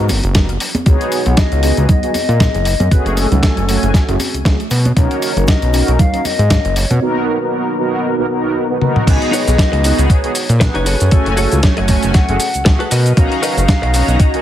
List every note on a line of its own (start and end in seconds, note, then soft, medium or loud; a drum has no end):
0.00 0.11 G#2 medium
0.09 0.21 F#1 medium
0.09 open hi-hat loud
0.09 high conga medium
0.09 cabasa medium
0.24 0.57 F#1 medium
0.24 closed hi-hat soft
0.24 cabasa soft
0.34 0.50 B3 medium
0.34 0.50 D#4 medium
0.34 0.50 F#4 medium
0.34 0.50 A#4 medium
0.34 kick loud
0.34 snare loud
0.34 closed hi-hat medium
0.34 cabasa soft
0.49 closed hi-hat soft
0.49 cabasa soft
0.60 open hi-hat loud
0.60 cabasa medium
0.75 closed hi-hat soft
0.75 high conga loud
0.75 cabasa soft
0.86 0.98 C#2 loud
0.86 1.23 B3 loud
0.86 1.23 D#4 medium
0.86 1.23 F#4 medium
0.86 1.23 G#4 loud
0.86 1.39 C#5 loud
0.86 kick loud
0.86 closed hi-hat medium
0.86 cabasa medium
1.01 closed hi-hat soft
1.01 cabasa soft
1.12 open hi-hat loud
1.12 cabasa medium
1.25 1.35 B1 loud
1.25 1.60 B3 medium
1.25 1.60 D#4 medium
1.25 1.61 F#4 medium
1.25 1.61 G#4 medium
1.25 closed hi-hat soft
1.25 cabasa soft
1.37 1.89 D#5 loud
1.37 kick loud
1.37 snare loud
1.37 closed hi-hat medium
1.37 cabasa soft
1.52 1.72 C#2 medium
1.52 closed hi-hat soft
1.52 cabasa soft
1.62 1.99 B3 medium
1.62 1.99 D#4 medium
1.62 2.00 F#4 medium
1.62 2.00 G#4 loud
1.62 open hi-hat loud
1.62 cabasa medium
1.77 1.87 C#2 medium
1.77 closed hi-hat soft
1.77 cabasa soft
1.89 2.93 D#5 loud
1.89 kick loud
1.89 closed hi-hat medium
1.89 low conga medium
1.89 cabasa medium
2.02 2.10 B3 medium
2.02 2.11 D#4 medium
2.02 2.11 F#4 medium
2.02 2.11 G#4 loud
2.02 closed hi-hat soft
2.02 cabasa soft
2.14 open hi-hat loud
2.14 high conga medium
2.14 cabasa medium
2.29 2.49 A#2 medium
2.29 closed hi-hat soft
2.29 cabasa soft
2.39 2.55 B3 medium
2.39 2.55 D#4 medium
2.39 2.55 F#4 medium
2.39 2.56 G#4 medium
2.39 kick loud
2.39 snare loud
2.39 closed hi-hat medium
2.39 cabasa medium
2.54 2.75 F#1 loud
2.54 closed hi-hat soft
2.54 cabasa soft
2.65 open hi-hat loud
2.65 cabasa medium
2.80 2.89 F#2 medium
2.80 closed hi-hat soft
2.80 high conga medium
2.80 cabasa soft
2.90 3.03 F#1 soft
2.90 3.28 A3 loud
2.90 3.28 C#4 medium
2.90 3.28 F#4 medium
2.90 3.28 G#4 loud
2.90 3.19 B4 loud
2.90 kick loud
2.90 closed hi-hat medium
2.90 cabasa medium
3.06 3.26 F#1 medium
3.06 closed hi-hat soft
3.06 cabasa soft
3.17 4.20 A4 medium
3.17 open hi-hat loud
3.17 cabasa medium
3.31 3.41 C#2 loud
3.31 3.66 A3 medium
3.31 3.66 C#4 medium
3.31 3.66 F#4 medium
3.31 closed hi-hat soft
3.31 low conga medium
3.31 cabasa soft
3.43 kick loud
3.43 snare loud
3.43 closed hi-hat medium
3.43 cabasa soft
3.57 3.77 F#1 medium
3.57 closed hi-hat soft
3.57 cabasa soft
3.68 4.05 A3 medium
3.68 4.05 C#4 medium
3.68 4.05 F#4 medium
3.68 4.05 G#5 loud
3.68 open hi-hat loud
3.68 cabasa medium
3.83 3.92 F#1 medium
3.83 closed hi-hat soft
3.83 cabasa soft
3.94 kick loud
3.94 snare medium
3.94 closed hi-hat medium
3.94 cabasa medium
4.08 4.18 F#1 loud
4.08 4.16 A3 loud
4.08 4.16 C#4 medium
4.08 4.16 F#4 medium
4.08 4.16 G#4 loud
4.08 closed hi-hat soft
4.08 cabasa soft
4.19 open hi-hat loud
4.19 high conga medium
4.19 cabasa medium
4.34 4.43 C#2 soft
4.34 closed hi-hat soft
4.34 cabasa soft
4.45 4.57 C#2 medium
4.45 4.61 A3 medium
4.45 4.61 C#4 medium
4.45 4.61 F#4 medium
4.45 4.61 G#4 medium
4.45 kick loud
4.45 snare loud
4.45 closed hi-hat medium
4.45 cabasa soft
4.60 closed hi-hat soft
4.60 cabasa soft
4.71 4.92 B2 medium
4.71 open hi-hat loud
4.71 cabasa loud
4.85 closed hi-hat soft
4.85 high conga medium
4.85 cabasa soft
4.96 5.08 B1 loud
4.96 5.33 C#4 loud
4.96 5.33 D#4 medium
4.96 5.33 F#4 medium
4.96 5.33 A#4 loud
4.96 5.50 C#5 loud
4.96 kick loud
4.96 closed hi-hat medium
4.96 cabasa medium
5.11 closed hi-hat soft
5.11 cabasa soft
5.22 open hi-hat loud
5.22 cabasa medium
5.36 5.46 F#1 medium
5.36 5.70 C#4 medium
5.36 5.71 D#4 medium
5.36 5.71 F#4 medium
5.36 5.71 A#4 medium
5.36 closed hi-hat soft
5.36 cabasa soft
5.47 6.02 D#5 loud
5.47 kick loud
5.47 snare loud
5.47 closed hi-hat medium
5.47 cabasa medium
5.62 5.83 B1 medium
5.62 closed hi-hat soft
5.62 cabasa soft
5.72 6.09 C#4 medium
5.72 6.10 D#4 medium
5.72 6.10 F#4 medium
5.72 6.10 A#4 medium
5.72 open hi-hat loud
5.72 cabasa medium
5.88 5.97 B1 medium
5.88 closed hi-hat soft
5.88 cabasa soft
5.99 6.27 F5 loud
5.99 kick loud
5.99 closed hi-hat medium
5.99 low conga medium
5.99 cabasa soft
6.12 6.21 C#4 loud
6.12 6.21 D#4 medium
6.12 6.21 F#4 medium
6.12 6.21 A#4 loud
6.12 closed hi-hat soft
6.12 cabasa soft
6.25 6.78 D#5 loud
6.25 open hi-hat medium
6.25 high conga medium
6.25 cabasa medium
6.39 6.59 G#2 medium
6.39 closed hi-hat soft
6.39 cabasa soft
6.49 6.65 C#4 medium
6.49 6.65 D#4 medium
6.49 6.65 F#4 medium
6.49 6.66 A#4 medium
6.49 kick loud
6.49 snare loud
6.49 closed hi-hat medium
6.49 cabasa medium
6.65 6.85 F#1 loud
6.65 closed hi-hat soft
6.65 cabasa soft
6.76 7.02 C#5 medium
6.76 open hi-hat loud
6.76 cabasa medium
6.90 7.00 B2 medium
6.90 closed hi-hat soft
6.90 high conga medium
6.90 cabasa soft
7.01 7.38 B3 loud
7.01 7.38 D#4 medium
7.01 7.38 F#4 medium
7.01 7.38 A#4 loud
7.41 7.76 B3 medium
7.41 7.76 D#4 medium
7.41 7.76 F#4 medium
7.41 7.76 A#4 medium
7.78 8.15 B3 medium
7.78 8.15 D#4 medium
7.78 8.15 F#4 medium
7.78 8.16 A#4 loud
8.18 8.26 B3 medium
8.18 8.26 D#4 medium
8.18 8.26 F#4 medium
8.18 8.26 A#4 loud
8.29 8.66 B3 medium
8.29 8.66 D#4 medium
8.29 8.66 F#4 medium
8.29 8.66 A#4 medium
8.70 8.77 B3 medium
8.70 8.77 D#4 medium
8.70 8.78 F#4 medium
8.70 8.78 B4 loud
8.81 9.04 B3 medium
8.81 9.04 D#4 medium
8.81 9.04 F#4 medium
8.81 9.05 A#4 loud
8.81 high tom medium
8.96 mid tom medium
9.06 9.19 C#2 loud
9.06 9.43 B3 loud
9.06 9.43 D#4 medium
9.06 9.44 F#4 medium
9.06 9.44 G#4 loud
9.06 10.11 D#5 loud
9.06 kick loud
9.06 closed hi-hat medium
9.06 crash loud
9.06 shaker soft
9.22 closed hi-hat soft
9.32 9.52 D#4 loud
9.32 9.53 F#4 medium
9.32 9.53 B4 loud
9.32 9.53 C#5 loud
9.32 open hi-hat loud
9.32 shaker medium
9.47 9.56 B1 loud
9.47 9.81 B3 medium
9.47 9.81 D#4 medium
9.47 9.81 F#4 medium
9.47 9.82 G#4 medium
9.47 closed hi-hat soft
9.47 shaker soft
9.58 kick loud
9.58 snare loud
9.58 closed hi-hat medium
9.58 shaker soft
9.72 9.93 C#2 medium
9.72 muted clean electric guitar stroke medium
9.72 closed hi-hat soft
9.83 10.20 B3 medium
9.83 10.21 D#4 medium
9.83 10.21 F#4 medium
9.83 10.21 G#4 loud
9.83 muted clean electric guitar stroke soft
9.83 open hi-hat loud
9.83 shaker medium
9.98 10.08 C#2 medium
9.98 closed hi-hat soft
9.98 shaker soft
10.09 10.60 C#5 loud
10.09 muted clean electric guitar stroke soft
10.09 kick loud
10.09 closed hi-hat medium
10.09 shaker soft
10.24 10.31 B3 loud
10.24 10.32 D#4 medium
10.24 10.32 F#4 medium
10.24 10.32 G#4 loud
10.24 closed hi-hat soft
10.35 open hi-hat loud
10.35 shaker medium
10.49 10.70 A#2 medium
10.49 closed hi-hat soft
10.49 shaker soft
10.60 10.76 B3 medium
10.60 10.76 D#4 medium
10.60 10.76 F#4 medium
10.60 10.76 G#4 medium
10.60 11.13 B4 loud
10.60 muted clean electric guitar stroke loud
10.60 kick loud
10.60 snare loud
10.60 closed hi-hat medium
10.60 shaker soft
10.74 10.95 F#1 loud
10.74 10.86 D#4 medium
10.74 10.84 F#4 medium
10.74 10.85 B4 medium
10.74 10.85 C#5 loud
10.74 closed hi-hat soft
10.85 11.28 F#4 medium
10.85 11.28 G#4 medium
10.85 11.29 A4 medium
10.85 11.29 C#5 loud
10.85 open hi-hat loud
10.85 shaker medium
11.00 11.10 F#2 medium
11.00 closed hi-hat soft
11.00 shaker soft
11.11 11.23 F#1 soft
11.11 11.49 A3 loud
11.11 11.49 C#4 medium
11.11 11.49 F#4 medium
11.11 11.64 A4 loud
11.11 11.49 G#5 loud
11.11 kick loud
11.11 closed hi-hat medium
11.11 shaker soft
11.26 11.47 F#1 medium
11.26 closed hi-hat soft
11.37 11.57 F#4 loud
11.37 11.57 G#4 loud
11.37 11.58 A4 loud
11.37 11.58 C#5 loud
11.37 open hi-hat loud
11.37 shaker medium
11.52 11.61 C#2 loud
11.52 11.86 A3 medium
11.52 11.86 C#4 medium
11.52 11.87 F#4 medium
11.52 11.87 G#5 medium
11.52 closed hi-hat soft
11.52 shaker soft
11.63 12.16 C#5 loud
11.63 kick loud
11.63 snare loud
11.63 closed hi-hat medium
11.63 shaker soft
11.77 11.98 F#1 medium
11.77 muted clean electric guitar stroke medium
11.77 closed hi-hat soft
11.88 12.25 A3 medium
11.88 12.26 C#4 medium
11.88 12.26 F#4 medium
11.88 12.26 G#5 loud
11.88 muted clean electric guitar stroke soft
11.88 kick medium
11.88 open hi-hat loud
11.88 shaker medium
12.03 12.13 F#1 medium
12.03 closed hi-hat soft
12.03 shaker soft
12.14 12.92 F#5 loud
12.14 muted clean electric guitar stroke soft
12.14 kick loud
12.14 snare medium
12.14 closed hi-hat medium
12.14 shaker soft
12.29 12.38 F#1 loud
12.29 12.37 A3 loud
12.29 12.37 C#4 medium
12.29 12.37 F#4 medium
12.29 12.37 G#4 loud
12.29 closed hi-hat soft
12.40 open hi-hat loud
12.40 shaker medium
12.54 12.64 C#2 soft
12.54 closed hi-hat soft
12.54 shaker soft
12.65 12.77 C#2 medium
12.65 12.81 A3 medium
12.65 12.81 C#4 medium
12.65 12.81 F#4 medium
12.65 12.82 G#4 medium
12.65 muted clean electric guitar stroke loud
12.65 kick loud
12.65 snare loud
12.65 closed hi-hat medium
12.65 shaker soft
12.79 12.89 F#4 medium
12.79 12.91 G#4 medium
12.79 12.91 A4 medium
12.79 12.90 B4 loud
12.79 closed hi-hat soft
12.91 13.13 B2 medium
12.91 13.33 F#4 loud
12.91 13.34 A#4 medium
12.91 13.34 B4 medium
12.91 13.34 D#5 loud
12.91 open hi-hat loud
12.91 shaker medium
13.06 closed hi-hat soft
13.06 shaker soft
13.17 13.29 B1 loud
13.17 13.54 C#4 loud
13.17 13.54 D#4 medium
13.17 13.54 F#4 loud
13.17 14.21 F5 loud
13.17 13.54 A#5 loud
13.17 kick loud
13.17 closed hi-hat medium
13.17 shaker soft
13.32 closed hi-hat soft
13.42 13.62 F#4 loud
13.42 13.63 A#4 loud
13.42 13.63 B4 loud
13.42 13.63 D#5 loud
13.42 open hi-hat loud
13.42 shaker medium
13.57 13.66 F#1 loud
13.57 13.91 C#4 medium
13.57 13.91 D#4 medium
13.57 13.92 F#4 medium
13.57 13.92 A#5 medium
13.57 closed hi-hat soft
13.57 shaker soft
13.68 kick loud
13.68 snare loud
13.68 closed hi-hat medium
13.68 shaker soft
13.82 14.03 B1 medium
13.82 muted clean electric guitar stroke medium
13.82 closed hi-hat soft
13.94 14.31 C#4 medium
13.94 14.31 D#4 medium
13.94 14.31 F#4 medium
13.94 14.31 A#5 loud
13.94 muted clean electric guitar stroke soft
13.94 open hi-hat loud
13.94 shaker medium
14.08 14.17 B1 medium
14.08 closed hi-hat soft
14.08 shaker soft
14.19 14.42 D#5 loud
14.19 muted clean electric guitar stroke soft
14.19 kick loud
14.19 closed hi-hat medium
14.19 shaker soft
14.33 14.41 C#4 loud
14.33 14.42 D#4 medium
14.33 14.42 F#4 medium
14.33 14.42 A#4 loud
14.33 closed hi-hat soft